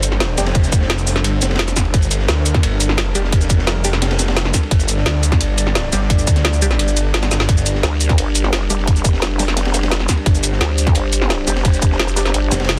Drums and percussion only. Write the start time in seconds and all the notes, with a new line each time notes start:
0.03 closed hi-hat, cabasa
0.12 snare
0.20 snare, closed hi-hat, ride
0.38 snare, closed hi-hat, ride, cabasa
0.46 snare, ride
0.55 kick, closed hi-hat, ride
0.64 snare, cabasa
0.72 kick, closed hi-hat, ride, cabasa
0.81 snare
0.90 snare, closed hi-hat, ride
0.98 cabasa
1.07 snare, open hi-hat, ride, cabasa
1.16 snare, closed hi-hat
1.24 closed hi-hat, ride
1.42 snare, closed hi-hat, ride, cabasa
1.50 snare, ride
1.55 snare, ride
1.59 snare, closed hi-hat
1.68 snare, closed hi-hat, cabasa
1.76 kick, snare, closed hi-hat, ride, cabasa
1.85 ride
1.94 kick, closed hi-hat, ride
2.03 cabasa
2.11 closed hi-hat, ride, cabasa
2.19 snare
2.28 snare, closed hi-hat, ride
2.37 snare
2.46 closed hi-hat, ride, cabasa
2.54 kick, snare, closed hi-hat
2.63 closed hi-hat, ride
2.81 closed hi-hat, ride, cabasa
2.89 snare
2.97 snare, closed hi-hat, ride
3.15 closed hi-hat, ride, cabasa
3.24 snare
3.32 kick, closed hi-hat, ride
3.41 snare, cabasa
3.50 kick, closed hi-hat, ride, cabasa
3.58 snare
3.67 snare, closed hi-hat, ride
3.84 snare, open hi-hat, ride, cabasa
3.93 snare, closed hi-hat
4.02 snare, closed hi-hat, ride
4.11 snare, ride
4.19 snare, closed hi-hat, ride, cabasa
4.28 snare, ride
4.37 snare, closed hi-hat, ride
4.45 snare
4.54 kick, snare, closed hi-hat, ride, cabasa
4.63 ride
4.71 kick, closed hi-hat, ride
4.80 cabasa
4.89 closed hi-hat, ride, cabasa
4.97 snare
5.06 snare, closed hi-hat, ride
5.15 snare
5.23 closed hi-hat, ride, cabasa
5.32 kick, snare, closed hi-hat
5.40 closed hi-hat, ride
5.57 closed hi-hat, ride, cabasa
5.67 snare
5.75 snare, closed hi-hat, ride
5.93 snare, closed hi-hat, ride, cabasa
6.02 snare
6.10 kick, closed hi-hat, ride
6.19 cabasa
6.27 kick, closed hi-hat, ride, cabasa
6.36 snare, closed hi-hat
6.44 snare, closed hi-hat, ride
6.53 cabasa
6.62 open hi-hat, cabasa
6.71 snare, closed hi-hat
6.79 closed hi-hat, ride
6.88 cabasa
6.97 closed hi-hat, ride, cabasa
7.14 snare, closed hi-hat, ride
7.22 snare, closed hi-hat, ride
7.31 snare, closed hi-hat, ride, cabasa
7.40 snare, ride
7.49 kick, closed hi-hat, ride
7.57 cabasa
7.66 closed hi-hat, ride, cabasa
7.75 snare
7.83 snare, closed hi-hat, ride
7.92 snare
8.01 closed hi-hat, ride, cabasa
8.09 kick, snare, closed hi-hat
8.18 closed hi-hat, ride
8.35 closed hi-hat, ride, cabasa
8.44 snare
8.52 snare, closed hi-hat, ride
8.70 closed hi-hat, ride, cabasa
8.79 snare
8.87 kick, closed hi-hat, ride
8.96 snare, cabasa
9.05 kick, closed hi-hat, ride, cabasa
9.13 snare
9.22 snare, closed hi-hat, ride
9.39 snare, open hi-hat, ride, cabasa
9.48 snare, closed hi-hat
9.57 snare, closed hi-hat, ride
9.65 snare, ride
9.74 snare, closed hi-hat, ride, cabasa
9.83 snare, ride
9.92 snare, closed hi-hat, ride
10.00 snare
10.09 kick, snare, closed hi-hat, ride, cabasa
10.17 ride
10.26 kick, closed hi-hat, ride
10.35 cabasa
10.43 closed hi-hat, ride, cabasa
10.52 snare
10.61 snare, closed hi-hat, ride
10.70 snare
10.78 closed hi-hat, ride, cabasa
10.87 kick, snare, closed hi-hat
10.95 closed hi-hat, ride
11.13 closed hi-hat, cabasa
11.22 snare
11.29 snare, closed hi-hat, ride
11.47 snare, closed hi-hat, ride, cabasa
11.56 snare, ride
11.65 kick, closed hi-hat, ride
11.74 snare, cabasa
11.82 kick, closed hi-hat, ride, cabasa
11.92 snare
11.99 snare, closed hi-hat, ride
12.08 cabasa
12.17 snare, open hi-hat, ride, cabasa
12.26 snare, closed hi-hat
12.34 closed hi-hat, ride
12.51 snare, closed hi-hat, ride, cabasa
12.60 snare, ride
12.64 snare, ride
12.69 snare, closed hi-hat